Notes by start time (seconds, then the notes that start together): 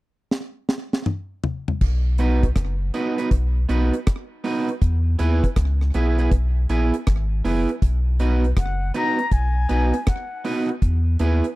0.31 snare
0.69 snare
0.93 snare
1.06 mid tom
1.44 floor tom
1.68 floor tom
1.81 B1, kick, crash
2.18 B3 D#4 F#4 B4, closed hi-hat
2.43 kick, closed hi-hat
2.56 F#1, kick, cross-stick, closed hi-hat
2.94 B3 D#4 F#4 B4, closed hi-hat
3.18 B3 D#4 F#4 B4, closed hi-hat
3.31 B1, kick, closed hi-hat
3.69 B1 B3 D#4 F#4 B4, closed hi-hat
3.94 closed hi-hat
4.07 kick, cross-stick, closed hi-hat
4.44 B3 D#4 F#4 B4, open hi-hat
4.68 closed hi-hat
4.82 E2, kick, closed hi-hat
5.19 D#2 B3 E4 G#4 B4, closed hi-hat
5.44 kick, closed hi-hat
5.56 C#2, kick, cross-stick, closed hi-hat
5.81 cross-stick
5.94 B1 B3 E4 G#4 B4, closed hi-hat
6.18 B3 E4 G#4 B4, closed hi-hat
6.32 B1, kick, closed hi-hat
6.69 A#1 B3 E4 G#4 B4, closed hi-hat
6.94 closed hi-hat
7.07 G#1, kick, cross-stick, closed hi-hat
7.45 F#1 B3 E4 G#4 B4, open hi-hat
7.69 closed hi-hat
7.82 B1, kick, closed hi-hat
8.20 B3 D#4 F#4 B4, closed hi-hat
8.44 closed hi-hat
8.57 F#1 F#5, kick, cross-stick, closed hi-hat
8.94 B3 D#4 F#4 B4 A#5, closed hi-hat
9.19 muted clean electric guitar stroke, closed hi-hat
9.31 B1 G#5, kick, closed hi-hat
9.69 B1 B3 D#4 F#4 B4, closed hi-hat
9.94 muted clean electric guitar stroke, closed hi-hat
10.07 F#5, kick, cross-stick, closed hi-hat
10.45 B3 D#4 F#4 B4, open hi-hat
10.69 closed hi-hat
10.82 E2, kick, closed hi-hat
11.19 D#2 B3 E4 G#4 B4, closed hi-hat
11.44 closed hi-hat